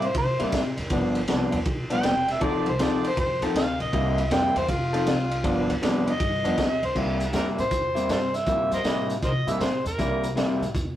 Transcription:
Already playing: upright bass A2
0.02 harmonica C5, ride
0.15 upright bass C3, harmonica C5, kick, ride
0.39 upright bass A#2, clean electric guitar C3 G3 A#3 E4, ride
0.52 upright bass A2, kick, snare, ride
0.77 upright bass E2, snare, ride
0.90 upright bass G1, clean electric guitar G2 F3 B3 D4, kick, ride
1.15 ride
1.28 upright bass C2, clean electric guitar G2 F3 B3 D4, snare, ride
1.52 upright bass E2, ride
1.65 upright bass B1, kick, ride
1.90 clean electric guitar G2 F3 B3 D4, harmonica G5, ride
2.03 upright bass E1, snare, ride
2.28 harmonica E5, snare, ride
2.40 upright bass F1, clean electric guitar F3 C4 D#4 A4, harmonica D5, kick, ride
2.66 upright bass C2, harmonica C5, ride
2.79 upright bass D2, clean electric guitar F3 C4 D#4 A4, harmonica D5, snare, ride
3.04 harmonica C5, ride
3.17 upright bass F2, harmonica C5, kick, ride
3.41 upright bass D#2, clean electric guitar F3 C4 D#4 A4, ride
3.54 upright bass D2, harmonica F5, snare, ride
3.80 upright bass A#1, harmonica D#5, ride
3.93 upright bass C2, clean electric guitar C3 G3 A#3 E4, kick, ride
4.18 ride
4.30 upright bass F2, clean electric guitar C3 G3 A#3 E4, harmonica G5, snare, ride
4.56 upright bass E2, harmonica C5, ride
4.69 upright bass F1, harmonica F4, kick, ride
4.93 clean electric guitar F3 C4 D#4 A4, ride
5.06 upright bass C2, snare, ride
5.31 ride
5.44 upright bass G1, clean electric guitar G2 F3 B3 D4, kick, ride
5.69 upright bass D2, ride
5.81 upright bass E2, clean electric guitar G2 F3 B3 D4, snare, ride
6.07 harmonica D#5, ride
6.20 upright bass G2, kick, ride
6.44 upright bass F2, clean electric guitar G2 F3 B3 D4, ride
6.58 upright bass E2, kick, snare, ride
6.83 upright bass D2, harmonica C5, ride
6.95 upright bass C2, clean electric guitar C3 G3 A#3 E4, kick, crash
7.20 closed hi-hat
7.33 upright bass F2, clean electric guitar C3 G3 A#3 E4, harmonica A#4, snare, closed hi-hat
7.58 upright bass A2, harmonica C5, closed hi-hat
7.71 upright bass E2, kick, closed hi-hat
7.95 clean electric guitar C3 G3 A#3 E4, closed hi-hat
8.09 upright bass G2, harmonica F4 A4 C5, snare, closed hi-hat
8.34 harmonica E5, snare, closed hi-hat
8.46 upright bass G2, clean electric guitar C3 G3 A#3 E4, kick, closed hi-hat
8.71 upright bass G2, harmonica A#4 C5 D#5, closed hi-hat
8.84 upright bass A2, clean electric guitar C3 G3 A#3 E4, snare, closed hi-hat
9.10 closed hi-hat
9.22 upright bass C3, harmonica A#4 C5 D#5, kick, closed hi-hat
9.47 upright bass A#2, clean electric guitar C3 G3 A#3 E4, harmonica E5, closed hi-hat
9.60 upright bass A2, harmonica C5, snare, closed hi-hat
9.85 upright bass E2, harmonica A#4, closed hi-hat
9.98 upright bass C2, clean electric guitar C3 G3 A#3 E4, kick, closed hi-hat
10.24 closed hi-hat
10.36 upright bass F2, clean electric guitar C3 G3 A#3 E4, snare, closed hi-hat
10.61 upright bass A2, closed hi-hat
10.74 upright bass E2, kick, closed hi-hat

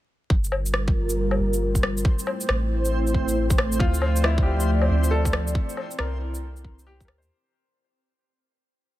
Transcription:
0.28 sub bass G1, analog synth pad G3 F4 A#4, synth texture C4 C5, kick
0.44 shaker
0.52 low woodblock
0.66 shaker
0.74 cross-stick
0.88 kick
1.10 shaker
1.31 low woodblock
1.39 sub bass G1
1.53 shaker
1.75 kick, shaker
1.83 cross-stick
1.97 shaker
2.05 analog synth pad A3 E4 C5, kick
2.19 shaker
2.27 low woodblock
2.41 shaker
2.49 sub bass A1, cross-stick
2.85 shaker
3.07 shaker
3.14 kick
3.28 shaker
3.50 kick, shaker
3.58 cross-stick, low woodblock
3.72 shaker
3.79 sub bass D2, analog synth pad F3 D5, upright piano F4, kick
3.94 shaker
4.02 low woodblock
4.16 shaker
4.24 upright piano E4, cross-stick
4.38 kick
4.43 upright piano G4
4.60 shaker
4.82 low woodblock
4.90 sub bass D2
5.04 shaker
5.11 upright piano A4
5.25 kick, shaker
5.33 cross-stick
5.48 shaker
5.55 analog synth pad C4 E4, kick
5.69 shaker
5.77 low woodblock
5.91 shaker
5.99 sub bass C2, upright piano A#4, cross-stick
6.35 shaker
6.56 shaker
6.65 kick
6.79 shaker
6.87 upright piano G4
7.00 sub bass D2, kick, shaker
7.05 upright piano A#4, cross-stick, low woodblock
7.18 upright piano C5
7.22 sub bass E2, shaker

